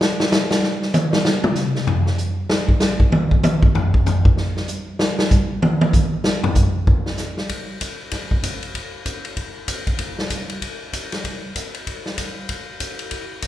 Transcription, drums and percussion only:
0.01 snare loud
0.20 snare loud
0.32 snare loud
0.32 hi-hat pedal medium
0.51 snare loud
0.63 snare soft
0.82 snare soft
0.94 hi-hat pedal medium
0.94 high tom loud
1.13 snare loud
1.25 snare loud
1.44 mid tom loud
1.55 snare soft
1.55 hi-hat pedal medium
1.75 snare medium
1.87 floor tom loud
2.06 snare medium
2.18 hi-hat pedal medium
2.50 snare loud
2.69 kick medium
2.80 snare loud
2.80 hi-hat pedal medium
3.00 kick medium
3.12 high tom loud
3.31 kick medium
3.43 hi-hat pedal medium
3.43 high tom loud
3.62 kick medium
3.75 floor tom loud
3.94 kick medium
4.06 floor tom loud
4.06 hi-hat pedal medium
4.25 kick medium
4.37 snare soft
4.56 snare soft
4.68 hi-hat pedal medium
4.99 snare loud
5.19 snare loud
5.31 kick medium
5.31 hi-hat pedal medium
5.62 high tom loud
5.81 high tom loud
5.93 kick medium
5.93 hi-hat pedal medium
6.24 snare loud
6.44 floor tom loud
6.55 kick medium
6.55 hi-hat pedal medium
6.87 kick medium
7.06 snare medium
7.17 snare soft
7.17 hi-hat pedal medium
7.37 snare medium
7.49 kick soft
7.49 ride medium
7.81 kick soft
7.81 hi-hat pedal medium
7.81 ride medium
8.11 kick soft
8.11 snare soft
8.11 ride medium
8.31 kick medium
8.43 kick soft
8.43 hi-hat pedal medium
8.43 ride medium
8.63 ride medium
8.75 kick soft
8.75 ride medium
9.06 kick soft
9.06 hi-hat pedal medium
9.06 ride medium
9.25 ride medium
9.37 kick soft
9.37 ride medium
9.68 kick soft
9.68 hi-hat pedal medium
9.68 ride medium
9.87 kick medium
9.87 ride medium
9.99 kick soft
9.99 ride medium
10.19 snare medium
10.30 kick soft
10.30 hi-hat pedal medium
10.30 ride medium
10.49 ride medium
10.62 kick soft
10.62 ride medium
10.93 kick soft
10.93 hi-hat pedal medium
10.93 ride medium
11.12 snare medium
11.12 ride medium
11.24 kick soft
11.24 ride medium
11.56 kick soft
11.56 hi-hat pedal medium
11.56 ride medium
11.74 ride medium
11.87 kick soft
11.87 ride medium
12.06 snare soft
12.18 kick soft
12.18 hi-hat pedal medium
12.18 ride medium
12.49 kick soft
12.49 ride medium
12.80 kick soft
12.80 hi-hat pedal medium
12.80 ride medium
12.99 ride medium
13.11 kick soft
13.11 ride medium
13.42 kick soft
13.42 hi-hat pedal medium
13.42 ride medium

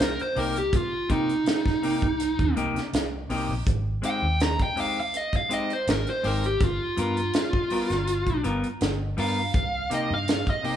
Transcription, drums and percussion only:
0.01 snare loud
0.19 closed hi-hat soft
0.36 open hi-hat medium
0.56 closed hi-hat soft
0.73 kick loud
0.73 closed hi-hat medium
1.09 kick medium
1.09 closed hi-hat medium
1.29 closed hi-hat soft
1.46 snare loud
1.46 closed hi-hat medium
1.66 kick medium
1.66 snare soft
1.83 open hi-hat medium
2.02 kick medium
2.02 closed hi-hat soft
2.20 closed hi-hat medium
2.39 kick medium
2.39 closed hi-hat soft
2.57 closed hi-hat medium
2.76 snare soft
2.76 closed hi-hat soft
2.93 snare loud
2.93 closed hi-hat medium
3.30 open hi-hat medium
3.67 kick loud
3.67 closed hi-hat medium
4.03 closed hi-hat medium
4.40 snare loud
4.40 closed hi-hat medium
4.59 kick medium
4.59 closed hi-hat soft
4.77 open hi-hat medium
5.14 closed hi-hat medium
5.33 kick medium
5.33 closed hi-hat soft
5.50 closed hi-hat medium
5.70 closed hi-hat soft
5.87 snare loud
5.87 closed hi-hat medium
6.07 closed hi-hat soft
6.24 open hi-hat medium
6.44 closed hi-hat soft
6.60 kick loud
6.60 closed hi-hat medium
6.97 closed hi-hat medium
7.17 closed hi-hat soft
7.33 snare loud
7.33 closed hi-hat medium
7.53 kick medium
7.70 open hi-hat medium
7.90 snare soft
7.90 closed hi-hat soft
8.07 closed hi-hat medium
8.26 kick medium
8.26 closed hi-hat soft
8.44 closed hi-hat medium
8.63 closed hi-hat soft
8.81 snare loud
8.81 closed hi-hat medium
9.17 open hi-hat medium
9.54 kick loud
9.54 closed hi-hat medium
9.91 closed hi-hat medium
10.28 snare loud
10.28 closed hi-hat medium
10.47 kick medium
10.47 closed hi-hat soft
10.64 open hi-hat medium

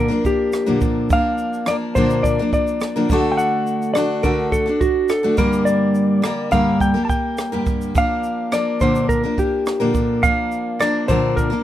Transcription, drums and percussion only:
0.11 cross-stick soft
0.25 kick medium
0.25 shaker soft
0.53 cross-stick medium
0.53 shaker medium
0.81 kick medium
0.81 shaker soft
1.10 kick loud
1.10 shaker medium
1.38 shaker soft
1.53 shaker soft
1.66 cross-stick loud
1.66 shaker medium
1.95 kick medium
1.95 shaker soft
2.10 shaker soft
2.24 kick medium
2.24 shaker medium
2.38 cross-stick soft
2.53 kick medium
2.53 shaker soft
2.67 shaker soft
2.81 cross-stick medium
2.81 shaker medium
3.09 kick loud
3.09 shaker soft
3.39 shaker medium
3.67 shaker soft
3.82 shaker soft
3.95 cross-stick loud
3.95 shaker medium
4.24 kick medium
4.24 shaker soft
4.52 kick medium
4.52 shaker medium
4.66 cross-stick soft
4.81 kick medium
4.81 shaker soft
5.09 cross-stick medium
5.09 shaker medium
5.38 kick medium
5.38 shaker soft
5.53 shaker medium
5.67 shaker medium
5.95 shaker soft
6.24 cross-stick loud
6.24 shaker medium
6.52 kick medium
6.52 shaker soft
6.80 kick medium
6.80 shaker medium
7.09 kick medium
7.09 shaker soft
7.38 cross-stick medium
7.38 shaker medium
7.66 kick medium
7.66 shaker soft
7.82 shaker medium
7.95 kick loud
7.95 shaker medium
8.23 shaker soft
8.52 cross-stick loud
8.52 shaker medium
8.80 kick medium
8.80 shaker soft
8.95 shaker soft
9.09 kick medium
9.09 shaker medium
9.38 kick medium
9.38 shaker soft
9.66 cross-stick loud
9.66 shaker medium
9.94 kick medium
9.94 shaker soft
10.23 kick loud
10.23 shaker medium
10.52 shaker soft
10.81 cross-stick loud
10.81 shaker medium
11.09 kick medium
11.09 shaker soft
11.37 kick medium
11.37 shaker medium
11.52 cross-stick soft

